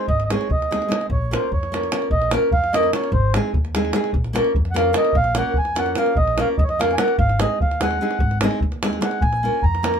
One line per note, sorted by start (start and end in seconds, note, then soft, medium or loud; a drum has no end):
0.08 0.33 G#1 loud
0.08 0.23 D#5 medium
0.08 davul low medium
0.20 davul high soft
0.25 0.30 D#5 soft
0.30 0.46 G#3 medium
0.30 0.47 C4 medium
0.30 0.47 D#4 medium
0.30 0.47 G#4 medium
0.30 0.51 C#5 medium
0.30 davul high medium
0.41 davul high soft
0.50 0.86 D#2 medium
0.50 1.06 D#5 medium
0.50 davul low medium
0.62 davul high soft
0.71 0.87 G#3 medium
0.71 0.87 C4 soft
0.71 0.87 D#4 medium
0.71 0.87 G#4 medium
0.71 davul high medium
0.82 davul high soft
0.88 1.05 G#3 medium
0.88 1.06 C4 medium
0.88 1.06 D#4 soft
0.88 1.06 G#4 medium
0.88 davul high medium
1.01 davul high soft
1.10 1.35 A#1 loud
1.10 1.33 C#5 medium
1.10 davul low medium
1.31 1.47 A#3 medium
1.31 1.48 C#4 medium
1.31 1.48 F4 medium
1.31 1.48 A#4 medium
1.31 1.51 C5 medium
1.31 davul high medium
1.52 1.87 F2 medium
1.52 2.08 C#5 medium
1.52 davul low medium
1.63 davul high soft
1.72 1.88 A#3 medium
1.72 1.88 C#4 soft
1.72 1.89 F4 medium
1.72 1.89 A#4 medium
1.72 davul high medium
1.83 davul high soft
1.92 2.07 A#3 medium
1.92 2.08 C#4 medium
1.92 2.07 F4 medium
1.92 2.08 A#4 medium
1.92 davul high medium
2.02 davul high soft
2.10 2.36 A#1 medium
2.10 2.32 D#5 medium
2.10 davul low medium
2.22 davul high soft
2.31 2.49 A#3 medium
2.31 2.49 C#4 medium
2.31 2.49 F4 medium
2.31 2.49 A#4 medium
2.31 davul high medium
2.51 2.88 F2 medium
2.51 2.74 F5 medium
2.51 davul low medium
2.64 davul high soft
2.73 2.89 A#3 medium
2.73 2.90 C#4 soft
2.73 2.90 F4 soft
2.73 2.90 A#4 medium
2.73 2.92 D#5 loud
2.73 davul high medium
2.83 davul high soft
2.93 3.09 A#3 medium
2.93 3.09 C#4 medium
2.93 3.10 F4 medium
2.93 3.10 A#4 medium
2.93 3.11 C#5 medium
2.93 davul high medium
3.04 davul high soft
3.12 3.37 G#1 loud
3.12 3.33 C5 medium
3.12 davul low medium
3.34 3.51 G#3 medium
3.34 3.51 C4 medium
3.34 3.51 D#4 medium
3.34 3.51 G#4 medium
3.34 davul high medium
3.54 3.90 D#2 medium
3.54 davul low medium
3.65 davul high soft
3.75 3.91 G#3 medium
3.75 3.91 C4 medium
3.75 3.91 D#4 medium
3.75 3.91 G#4 medium
3.75 davul high medium
3.85 davul high soft
3.93 4.10 G#3 medium
3.93 4.10 C4 medium
3.93 4.10 D#4 medium
3.93 4.11 G#4 medium
3.93 davul high medium
4.04 davul high soft
4.13 4.39 A#1 medium
4.13 davul low medium
4.24 davul high soft
4.33 4.51 A#3 medium
4.33 4.51 C#4 medium
4.33 4.51 F4 medium
4.33 4.52 A#4 medium
4.33 davul high medium
4.44 davul high soft
4.54 4.91 F2 medium
4.54 davul low loud
4.65 davul high soft
4.71 4.91 A#3 medium
4.71 4.91 C#4 soft
4.71 4.92 F4 medium
4.71 4.76 F#5 medium
4.76 4.92 A#4 medium
4.76 4.95 F5 medium
4.76 davul high medium
4.93 5.10 A#3 medium
4.93 5.10 C#4 medium
4.93 5.11 F4 soft
4.93 5.11 A#4 medium
4.93 davul high medium
4.98 5.16 D#5 medium
5.05 davul high soft
5.13 5.40 A#1 loud
5.13 5.36 F5 loud
5.13 davul low medium
5.24 davul high soft
5.35 5.52 A#3 medium
5.35 5.53 C#4 medium
5.35 5.53 F4 medium
5.35 5.53 A#4 medium
5.35 5.58 F#5 medium
5.35 davul high medium
5.54 5.93 F2 medium
5.54 davul low medium
5.58 5.79 G#5 medium
5.65 davul high soft
5.75 5.92 A#3 medium
5.75 5.93 C#4 medium
5.75 5.93 F4 medium
5.75 5.93 A#4 medium
5.75 5.98 F#5 medium
5.75 davul high medium
5.86 davul high soft
5.95 6.13 A#3 medium
5.95 6.13 C#4 medium
5.95 6.13 F4 medium
5.95 6.13 A#4 medium
5.95 6.18 F5 medium
5.95 davul high medium
6.06 davul high soft
6.15 6.42 A#1 medium
6.15 6.40 D#5 medium
6.15 davul low medium
6.27 davul high soft
6.38 6.54 A#3 medium
6.38 6.55 C#4 medium
6.38 6.55 F4 medium
6.38 6.55 A#4 medium
6.38 6.48 F5 medium
6.38 davul high medium
6.58 6.95 F2 medium
6.58 6.64 D#5 medium
6.58 davul low medium
6.64 6.69 C#5 medium
6.69 6.80 D#5 medium
6.69 davul high soft
6.79 6.95 A#3 medium
6.79 6.95 C#4 medium
6.79 6.96 F4 medium
6.79 6.96 A#4 medium
6.79 6.94 F5 medium
6.79 davul high medium
6.91 6.98 G#5 medium
6.91 davul high soft
6.98 7.15 A#3 medium
6.98 7.15 C#4 medium
6.98 7.15 F4 medium
6.98 7.15 A#4 medium
6.98 7.17 F#5 medium
6.98 davul high medium
7.08 davul high soft
7.18 7.44 G#1 loud
7.18 7.39 F5 medium
7.18 davul low medium
7.29 davul high soft
7.39 7.56 G#3 medium
7.39 7.56 C4 medium
7.39 7.57 D#4 medium
7.39 7.57 G#4 medium
7.39 7.59 D#5 medium
7.39 davul high medium
7.61 7.97 D#2 medium
7.61 7.81 F5 medium
7.61 davul low medium
7.71 davul high soft
7.81 7.97 G#3 medium
7.81 7.97 C4 medium
7.81 7.97 D#4 soft
7.81 7.98 G#4 medium
7.81 8.39 F#5 medium
7.81 davul high medium
7.91 davul high soft
8.01 8.17 G#3 medium
8.01 8.17 C4 medium
8.01 8.17 D#4 medium
8.01 8.17 G#4 medium
8.11 davul high soft
8.19 8.45 G#1 loud
8.19 davul low medium
8.31 davul high soft
8.41 8.58 G#3 medium
8.41 8.59 C4 medium
8.41 8.59 D#4 medium
8.41 8.59 G#4 medium
8.41 davul high medium
8.51 davul high soft
8.61 8.98 D#2 medium
8.61 davul low medium
8.72 davul high soft
8.83 8.99 G#3 medium
8.83 8.99 C4 medium
8.83 8.99 D#4 medium
8.83 8.99 G#4 medium
8.83 davul high medium
8.93 davul high soft
9.01 9.17 G#3 medium
9.01 9.18 C4 medium
9.01 9.18 D#4 medium
9.01 9.18 G#4 medium
9.01 9.23 F#5 medium
9.01 davul high medium
9.11 davul high soft
9.21 9.47 A#1 loud
9.21 9.65 G#5 medium
9.21 davul low medium
9.33 davul high soft
9.43 9.59 A#3 medium
9.43 9.60 C#4 medium
9.43 9.60 F4 medium
9.43 9.60 A#4 medium
9.62 9.99 F2 medium
9.62 10.00 A#5 medium
9.62 davul low medium
9.75 davul high soft
9.83 10.00 A#3 medium
9.83 10.00 C#4 medium
9.83 10.00 F4 soft
9.83 10.00 A#4 medium
9.83 davul high medium
9.94 davul high soft